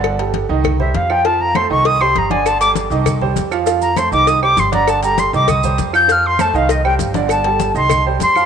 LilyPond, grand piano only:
\new Staff \with { instrumentName = "Grand piano" } { \time 4/4 \key c \dorian \tempo 4 = 198 <d d' d''>8 <g g' a'>4 <ees ees' ees''>4 <g g' c''>4 <f f' f''>8 | <f f' f''>4 <a a' c''>8 <ees ees' ees''>4 <g g' c''>4 <d d' d''>8~ | <d d' d''>8 <g g' a'>4 <ees ees' ees''>4 <g g' c''>4 <f f' f''>8 | <f f' f''>4 <a a' c''>8 <ees ees' ees''>4 <g g' c''>4 <d d' d''>8~ |
<d d' d''>8 <g g' a'>4 <ees ees' ees''>4 <g g' c''>4 <f f' f''>8 | <f f' f''>4 <a a' c''>8 <ees ees' ees''>4 <g g' c''>4 <d d' d''>8~ | <d d' d''>8 <g g' a'>4 <ees ees' ees''>4 <g g' c''>4 <f f' f''>8 | }